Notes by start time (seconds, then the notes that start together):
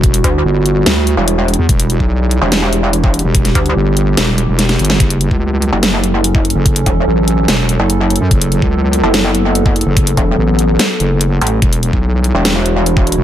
Already playing: E1 G3 E4 F#4
0.04 kick, closed hi-hat
0.14 closed hi-hat
0.24 D2, kick, closed hi-hat
0.45 G1
0.66 closed hi-hat
0.86 D2, snare, closed hi-hat
1.07 closed hi-hat
1.17 E1
1.28 closed hi-hat
1.48 closed hi-hat
1.54 closed hi-hat
1.59 E2
1.69 E1 G4, kick, closed hi-hat
1.80 closed hi-hat
1.90 closed hi-hat
2.00 B1, kick
2.31 closed hi-hat
2.42 E1
2.52 snare, closed hi-hat
2.73 closed hi-hat
2.93 closed hi-hat
3.04 kick
3.14 closed hi-hat
3.19 closed hi-hat
3.24 E1
3.35 kick, closed hi-hat
3.45 snare, closed hi-hat
3.55 D2, kick, closed hi-hat
3.66 closed hi-hat
3.76 G1
3.97 closed hi-hat
4.17 E1, snare, closed hi-hat
4.38 closed hi-hat
4.49 E1
4.59 snare, closed hi-hat
4.69 snare, closed hi-hat
4.79 G1, closed hi-hat
4.85 closed hi-hat
4.90 snare
5.00 F#1 F#3 C#4 A4, kick, closed hi-hat
5.10 closed hi-hat
5.21 closed hi-hat
5.31 C#2, kick
5.62 closed hi-hat
5.73 F#1
5.83 snare, closed hi-hat
6.04 closed hi-hat
6.24 closed hi-hat
6.35 kick
6.45 closed hi-hat
6.50 closed hi-hat
6.55 F#1
6.66 kick, closed hi-hat
6.76 closed hi-hat
6.86 E1, kick, closed hi-hat
7.07 A1
7.28 closed hi-hat
7.48 E1, snare, closed hi-hat
7.69 closed hi-hat
7.80 F#1
7.90 closed hi-hat
8.10 closed hi-hat
8.16 closed hi-hat
8.21 F#2
8.31 F#1 B3, kick, closed hi-hat
8.42 closed hi-hat
8.52 closed hi-hat
8.62 C#2, kick
8.93 closed hi-hat
9.04 F#1
9.14 snare, closed hi-hat
9.35 closed hi-hat
9.55 closed hi-hat
9.66 kick
9.76 closed hi-hat
9.81 closed hi-hat
9.86 F#1
9.97 kick, closed hi-hat
10.07 closed hi-hat
10.17 E1, kick, closed hi-hat
10.38 A1
10.59 closed hi-hat
10.79 snare, closed hi-hat
11.00 F#1, closed hi-hat
11.21 closed hi-hat
11.41 A1, closed hi-hat
11.47 closed hi-hat
11.62 E1 G3 E4 F#4, kick, closed hi-hat
11.73 closed hi-hat
11.83 closed hi-hat
11.93 B1, kick
12.24 closed hi-hat
12.35 E1
12.45 snare, closed hi-hat
12.66 closed hi-hat
12.86 closed hi-hat
12.97 kick
13.07 closed hi-hat
13.12 closed hi-hat
13.17 E1